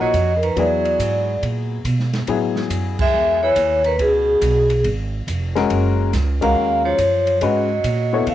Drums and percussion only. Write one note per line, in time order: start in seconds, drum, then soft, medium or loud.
0.14 kick soft
0.14 hi-hat pedal medium
0.14 ride medium
0.43 ride soft
0.57 kick soft
0.57 ride medium
0.85 ride soft
0.99 kick soft
0.99 hi-hat pedal medium
0.99 ride medium
1.42 kick soft
1.42 ride medium
1.85 kick soft
1.85 hi-hat pedal medium
1.85 ride medium
1.99 snare soft
2.13 snare soft
2.13 ride soft
2.27 kick soft
2.27 ride medium
2.56 snare soft
2.70 kick soft
2.70 hi-hat pedal medium
2.70 ride medium
2.99 kick medium
2.99 crash medium
3.56 kick soft
3.56 hi-hat pedal soft
3.56 ride medium
3.84 ride soft
3.99 kick soft
3.99 ride medium
4.42 kick soft
4.42 hi-hat pedal soft
4.42 ride medium
4.70 ride soft
4.84 kick soft
4.84 ride medium
5.27 kick soft
5.27 hi-hat pedal medium
5.27 ride medium
5.56 snare soft
5.56 ride soft
5.70 kick soft
5.70 ride medium
6.13 kick soft
6.13 snare soft
6.13 hi-hat pedal medium
6.13 ride medium
6.42 kick medium
6.42 ride medium
6.98 kick soft
6.98 hi-hat pedal medium
6.98 ride medium
7.27 ride soft
7.41 kick soft
7.41 ride medium
7.84 kick soft
7.84 hi-hat pedal medium
7.84 ride medium
8.27 kick soft
8.27 ride medium